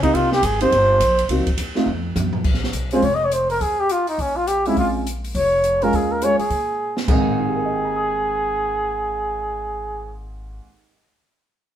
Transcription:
Already playing: upright bass C#2
0.02 upright piano A#3 C4 D#4 G4, muted trumpet D#4, kick, ride
0.14 upright bass C2, muted trumpet F4, ride
0.32 muted trumpet G4, snare
0.42 upright bass G#1, muted trumpet G#4, kick, hi-hat pedal, ride
0.61 upright piano A#3 C4 D#4 G4, muted trumpet C5, ride
0.71 upright bass G1, kick, ride
1.00 upright bass A#1, kick, hi-hat pedal, ride
1.19 ride
1.29 upright bass C2, upright piano A#3 C4 D#4 F#4, kick, ride
1.38 upright bass A#1
1.47 upright bass F#1, kick, ride
1.57 upright bass D#2, kick, hi-hat pedal, ride
1.75 upright piano A3 C4 D#4 F4, snare
1.86 upright bass F2, mid tom
2.15 upright bass F#2, hi-hat pedal, mid tom
2.33 floor tom
2.44 upright bass A#1, kick, crash
2.54 snare
2.64 snare
2.73 upright bass B1, closed hi-hat
2.91 upright piano G#3 C4 C#4 F4, muted trumpet C5, open hi-hat
3.02 upright bass F1, muted trumpet C#5, kick, open hi-hat
3.15 muted trumpet D#5
3.25 muted trumpet C#5
3.32 muted trumpet C5, closed hi-hat
3.50 muted trumpet A#4, open hi-hat
3.60 upright bass D#2, muted trumpet G#4, kick, open hi-hat
3.80 muted trumpet G4
3.89 muted trumpet F4, closed hi-hat
4.07 muted trumpet D#4, open hi-hat
4.18 upright bass A#1, muted trumpet C#4, kick, open hi-hat
4.36 muted trumpet F4
4.47 muted trumpet G4, closed hi-hat
4.66 upright piano G#3 C4 C#4 F4, muted trumpet E4, open hi-hat
4.76 upright bass A#1, muted trumpet F4, kick, open hi-hat
5.07 closed hi-hat
5.24 open hi-hat
5.35 upright bass F1, muted trumpet C#5, kick, open hi-hat
5.64 closed hi-hat
5.82 upright piano G#3 A#3 C#4 F4, muted trumpet A#4, open hi-hat
5.93 upright bass D#2, muted trumpet G#4, kick, open hi-hat
6.12 muted trumpet A#4
6.22 upright piano G#3 A#3 C#4 F4, muted trumpet C#5, closed hi-hat
6.38 muted trumpet G#4, muted upright bass stroke, open hi-hat
6.50 upright bass A#2, kick, open hi-hat
6.97 snare
7.08 upright bass G#1, upright piano G#2 D#3 G#3 A#3 C4, muted trumpet G#4, kick, floor tom, china
7.39 upright piano D#4
7.47 upright piano G4
7.56 upright piano A#4
7.64 upright piano D#5
7.74 upright piano G5
7.85 upright piano A#5
7.96 upright piano D#6

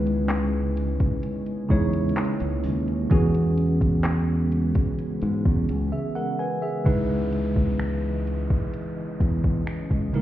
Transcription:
Already playing: fingered electric bass C#2, tine electric piano C#3 G#3 D#4 E4 B4, ambient pad C#3 G#3 B3 C#4
0.07 closed hi-hat
0.29 clap, closed hi-hat
0.77 closed hi-hat
1.00 kick, closed hi-hat
1.23 ambient pad A#3, closed hi-hat
1.46 closed hi-hat
1.69 fingered electric bass E2, tine electric piano C#3 G#3 D#4 E4 C#5, kick
1.93 closed hi-hat
2.09 closed hi-hat
2.17 clap
2.25 closed hi-hat
2.40 fingered electric bass C#2, closed hi-hat
2.64 fingered electric bass D#2, open hi-hat
2.88 closed hi-hat
3.10 fingered electric bass E2, tine electric piano E3 B3 C#4 F#4 G#4, ambient pad B3, kick, closed hi-hat
3.35 closed hi-hat
3.58 closed hi-hat
3.81 kick, closed hi-hat
4.04 clap, closed hi-hat
4.52 closed hi-hat
4.75 kick, closed hi-hat
4.99 closed hi-hat
5.22 fingered electric bass G#2, closed hi-hat
5.45 fingered electric bass E2, kick
5.69 fingered electric bass C#2, closed hi-hat
5.92 tine electric piano G#4 E5
6.15 tine electric piano A#4 F#5
6.39 tine electric piano B4 G#5
6.62 tine electric piano G#4 E5
6.84 fingered electric bass C#2, tine electric piano C#3 G#3 D#4 E4 B4, ambient pad E3 B3 D#5, kick, closed hi-hat, downlifter
7.33 closed hi-hat
7.56 kick
7.79 finger snap, closed hi-hat
8.27 closed hi-hat
8.50 kick
8.74 ambient pad C#4, closed hi-hat
9.20 fingered electric bass E2, kick, closed hi-hat
9.44 kick
9.67 finger snap, closed hi-hat
9.91 fingered electric bass C#2, kick
10.13 fingered electric bass A#1, tine electric piano C#3 G#3 D#4 E4 A#4, closed hi-hat

